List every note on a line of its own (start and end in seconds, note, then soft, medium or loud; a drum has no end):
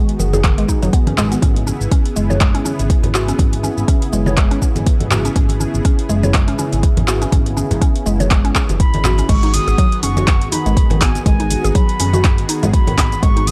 0.00 1.38 D#3 medium
0.00 9.25 B3 medium
0.00 1.38 F#4 medium
0.00 1.38 G#4 medium
0.09 closed hi-hat soft
0.19 0.59 F#1 loud
0.19 0.32 D#3 medium
0.19 muted conga medium
0.19 high conga medium
0.19 shaker medium
0.33 0.43 G#4 medium
0.33 high conga loud
0.33 shaker medium
0.44 0.57 D#3 medium
0.44 kick loud
0.44 clap medium
0.44 closed hi-hat medium
0.44 shaker soft
0.58 0.64 G#1 medium
0.58 0.64 G#3 loud
0.58 closed hi-hat soft
0.68 0.81 D#4 loud
0.68 kick medium
0.68 shaker medium
0.82 0.89 F#1 loud
0.82 0.93 F#3 loud
0.82 closed hi-hat soft
0.82 muted conga medium
0.82 high conga loud
0.82 shaker medium
0.93 1.06 B3 medium
0.93 kick loud
0.93 closed hi-hat medium
0.93 shaker soft
1.07 1.36 G#1 medium
1.07 1.17 C#4 medium
1.07 closed hi-hat soft
1.07 muted conga soft
1.07 high conga loud
1.18 1.31 G#3 loud
1.18 clap medium
1.18 low conga medium
1.18 shaker loud
1.32 1.41 B3 medium
1.32 closed hi-hat soft
1.32 muted conga soft
1.32 shaker medium
1.42 1.72 G#1 loud
1.42 9.25 C#3 medium
1.42 1.56 C#4 medium
1.42 9.25 E4 medium
1.42 9.25 G#4 medium
1.42 kick loud
1.42 closed hi-hat medium
1.42 high conga medium
1.42 shaker soft
1.56 closed hi-hat soft
1.56 muted conga soft
1.67 1.74 C#4 medium
1.67 high conga medium
1.67 shaker medium
1.81 1.87 G#1 loud
1.81 shaker medium
1.91 2.05 C#4 loud
1.91 kick loud
1.91 closed hi-hat medium
1.91 muted conga soft
1.91 shaker soft
2.06 closed hi-hat soft
2.16 2.56 F#1 loud
2.16 2.29 G#3 medium
2.16 muted conga soft
2.16 shaker medium
2.30 2.40 C#5 medium
2.30 high conga loud
2.30 shaker medium
2.40 2.54 G#3 medium
2.40 kick loud
2.40 clap medium
2.40 closed hi-hat medium
2.40 muted conga soft
2.40 shaker soft
2.55 2.61 G#1 medium
2.55 2.60 C#4 loud
2.55 closed hi-hat soft
2.65 2.73 C#4 medium
2.65 high conga medium
2.65 shaker medium
2.79 2.93 G#1 medium
2.79 closed hi-hat soft
2.79 muted conga medium
2.79 shaker medium
2.90 kick loud
2.90 closed hi-hat medium
2.90 shaker soft
3.03 3.32 G#1 medium
3.03 closed hi-hat soft
3.03 muted conga soft
3.03 high conga loud
3.03 low conga medium
3.14 3.27 F#4 medium
3.14 clap medium
3.14 shaker medium
3.28 3.38 C#4 medium
3.28 closed hi-hat soft
3.28 muted conga medium
3.28 shaker medium
3.39 3.69 G#1 loud
3.39 3.52 C#4 medium
3.39 kick loud
3.39 closed hi-hat medium
3.39 high conga medium
3.39 shaker soft
3.53 closed hi-hat soft
3.53 muted conga medium
3.63 3.71 C#4 medium
3.63 high conga medium
3.63 shaker medium
3.78 3.84 G#1 loud
3.78 shaker soft
3.88 4.01 C#4 loud
3.88 kick loud
3.88 closed hi-hat medium
3.88 muted conga soft
3.88 shaker soft
4.02 closed hi-hat soft
4.13 4.53 F#1 loud
4.13 4.25 G#3 medium
4.13 muted conga medium
4.13 high conga medium
4.13 shaker medium
4.26 4.37 C#5 medium
4.26 high conga loud
4.26 shaker soft
4.37 4.51 G#3 medium
4.37 kick loud
4.37 clap medium
4.37 closed hi-hat medium
4.37 muted conga soft
4.37 shaker soft
4.51 4.58 G#1 medium
4.51 4.57 C#4 loud
4.51 closed hi-hat soft
4.62 4.69 C#4 medium
4.62 kick medium
4.62 shaker medium
4.76 4.90 G#1 medium
4.76 closed hi-hat soft
4.76 muted conga medium
4.76 high conga medium
4.76 shaker medium
4.87 kick loud
4.87 closed hi-hat medium
4.87 shaker soft
5.00 5.29 G#1 medium
5.00 closed hi-hat soft
5.00 muted conga soft
5.00 high conga loud
5.11 5.24 F#4 medium
5.11 clap medium
5.11 low conga medium
5.11 shaker medium
5.25 5.34 C#4 medium
5.25 closed hi-hat soft
5.25 muted conga medium
5.25 shaker medium
5.36 5.66 G#1 loud
5.36 5.49 C#4 medium
5.36 kick loud
5.36 closed hi-hat medium
5.36 high conga medium
5.36 shaker soft
5.49 closed hi-hat soft
5.49 muted conga medium
5.60 5.68 C#4 medium
5.60 high conga medium
5.60 shaker medium
5.74 5.81 G#1 loud
5.74 shaker soft
5.85 5.98 C#4 loud
5.85 kick loud
5.85 closed hi-hat medium
5.85 muted conga soft
5.85 shaker soft
5.99 closed hi-hat soft
6.09 6.49 F#1 loud
6.09 6.22 G#3 medium
6.09 muted conga medium
6.09 shaker medium
6.23 6.34 C#5 medium
6.23 high conga loud
6.23 shaker soft
6.34 6.47 G#3 medium
6.34 kick loud
6.34 clap medium
6.34 closed hi-hat medium
6.34 shaker soft
6.48 6.55 G#1 medium
6.48 6.54 C#4 loud
6.48 closed hi-hat soft
6.58 6.66 C#4 medium
6.58 high conga medium
6.58 shaker medium
6.72 6.86 G#1 medium
6.72 closed hi-hat soft
6.72 muted conga medium
6.72 shaker soft
6.83 kick loud
6.83 closed hi-hat medium
6.83 shaker soft
6.97 7.26 G#1 medium
6.97 closed hi-hat soft
6.97 muted conga soft
6.97 high conga loud
6.97 low conga medium
7.08 7.20 F#4 medium
7.08 clap medium
7.08 shaker medium
7.22 7.31 C#4 medium
7.22 closed hi-hat soft
7.22 muted conga soft
7.22 shaker soft
7.32 7.62 G#1 loud
7.32 7.46 C#4 medium
7.32 kick loud
7.32 closed hi-hat medium
7.32 high conga medium
7.32 shaker soft
7.46 closed hi-hat soft
7.46 muted conga medium
7.57 7.64 C#4 medium
7.57 high conga medium
7.57 shaker medium
7.71 7.77 G#1 loud
7.71 closed hi-hat soft
7.71 low conga medium
7.71 shaker soft
7.81 7.95 C#4 loud
7.81 kick loud
7.81 closed hi-hat medium
7.81 muted conga soft
7.81 shaker soft
7.96 closed hi-hat soft
8.06 8.46 F#1 loud
8.06 8.19 G#3 medium
8.06 muted conga medium
8.06 high conga medium
8.06 shaker medium
8.20 8.30 C#5 medium
8.20 closed hi-hat soft
8.20 high conga loud
8.20 shaker medium
8.31 8.44 G#3 medium
8.31 kick loud
8.31 clap medium
8.31 closed hi-hat medium
8.31 muted conga soft
8.31 shaker soft
8.45 8.51 G#1 medium
8.45 8.50 C#4 loud
8.45 closed hi-hat soft
8.55 8.63 C#4 medium
8.55 kick medium
8.55 clap medium
8.55 shaker medium
8.69 8.83 F#1 medium
8.69 closed hi-hat soft
8.69 muted conga medium
8.69 high conga loud
8.69 shaker medium
8.80 9.31 B5 loud
8.80 kick loud
8.80 closed hi-hat medium
8.80 shaker soft
8.94 9.22 G#1 medium
8.94 closed hi-hat soft
8.94 muted conga soft
8.94 high conga loud
9.04 9.17 F#4 medium
9.04 clap medium
9.04 low conga medium
9.04 shaker medium
9.18 9.28 C#4 medium
9.18 closed hi-hat soft
9.18 muted conga soft
9.18 shaker medium
9.29 9.59 G#1 loud
9.29 13.51 D#3 medium
9.29 9.42 G#3 medium
9.29 13.51 B3 medium
9.29 13.51 F#4 medium
9.29 13.51 G#4 medium
9.29 9.55 C#6 loud
9.29 kick loud
9.29 closed hi-hat medium
9.29 crash loud
9.29 high conga medium
9.29 shaker soft
9.43 9.49 D#4 medium
9.43 closed hi-hat soft
9.43 muted conga medium
9.54 10.02 D#6 loud
9.54 open hi-hat medium
9.54 high conga medium
9.54 shaker medium
9.68 9.74 G#1 loud
9.68 9.77 G#4 loud
9.68 closed hi-hat soft
9.68 shaker medium
9.78 9.86 F#3 loud
9.78 kick loud
9.78 closed hi-hat medium
9.78 muted conga soft
9.78 shaker soft
9.92 closed hi-hat soft
10.03 10.43 F#1 loud
10.03 10.10 C#4 medium
10.03 10.49 C#6 loud
10.03 open hi-hat medium
10.03 muted conga medium
10.03 shaker medium
10.17 10.27 F#4 medium
10.17 closed hi-hat soft
10.17 high conga loud
10.17 shaker medium
10.27 kick loud
10.27 clap loud
10.27 closed hi-hat medium
10.27 shaker soft
10.41 10.48 G#1 medium
10.41 closed hi-hat soft
10.51 10.65 D#4 medium
10.51 11.03 B5 loud
10.51 open hi-hat medium
10.51 high conga medium
10.51 shaker medium
10.66 10.80 G#1 medium
10.66 10.76 G#3 medium
10.66 closed hi-hat soft
10.66 muted conga medium
10.66 shaker medium
10.77 kick loud
10.77 closed hi-hat medium
10.77 shaker soft
10.90 11.19 G#1 loud
10.90 11.00 D#3 loud
10.90 closed hi-hat soft
10.90 muted conga soft
10.90 high conga loud
10.90 low conga medium
11.01 11.09 B3 medium
11.01 11.25 G#5 medium
11.01 kick medium
11.01 clap loud
11.01 open hi-hat loud
11.01 shaker loud
11.15 closed hi-hat soft
11.15 muted conga medium
11.15 shaker medium
11.26 11.56 G#1 loud
11.26 11.38 G#3 medium
11.26 11.77 G#5 loud
11.26 kick loud
11.26 closed hi-hat medium
11.26 high conga medium
11.26 shaker soft
11.40 11.46 D#4 medium
11.40 closed hi-hat soft
11.40 muted conga medium
11.50 open hi-hat medium
11.50 high conga medium
11.50 shaker medium
11.64 11.71 G#1 loud
11.64 11.74 G#4 loud
11.64 closed hi-hat soft
11.64 shaker medium
11.75 11.83 F#3 loud
11.75 12.49 B5 medium
11.75 kick loud
11.75 closed hi-hat medium
11.75 muted conga soft
11.75 shaker soft
11.89 closed hi-hat soft
12.00 12.40 F#1 loud
12.00 12.07 C#4 medium
12.00 open hi-hat medium
12.00 muted conga soft
12.00 high conga medium
12.00 shaker medium
12.13 12.24 F#4 medium
12.13 closed hi-hat soft
12.13 high conga loud
12.13 shaker medium
12.24 kick loud
12.24 clap loud
12.24 closed hi-hat medium
12.24 muted conga soft
12.24 shaker soft
12.38 12.45 G#1 medium
12.38 closed hi-hat soft
12.49 12.62 D#4 medium
12.49 open hi-hat medium
12.49 shaker loud
12.63 12.77 G#1 loud
12.63 12.72 G#3 medium
12.63 closed hi-hat soft
12.63 muted conga medium
12.63 high conga loud
12.63 shaker medium
12.73 13.24 B5 loud
12.73 kick loud
12.73 closed hi-hat medium
12.73 shaker soft
12.87 13.16 G#1 medium
12.87 12.97 D#3 loud
12.87 closed hi-hat soft
12.87 muted conga soft
12.87 high conga loud
12.98 13.06 B3 medium
12.98 kick medium
12.98 clap loud
12.98 open hi-hat medium
12.98 low conga loud
12.98 shaker loud
13.12 closed hi-hat soft
13.12 muted conga soft
13.12 shaker medium
13.23 13.51 G#1 loud
13.23 13.35 G#3 medium
13.23 13.49 C#6 loud
13.23 kick loud
13.23 closed hi-hat medium
13.23 high conga loud
13.23 shaker soft
13.36 13.42 D#4 medium
13.36 closed hi-hat soft
13.36 muted conga soft
13.47 13.51 D#6 loud
13.47 open hi-hat medium
13.47 high conga medium
13.47 shaker medium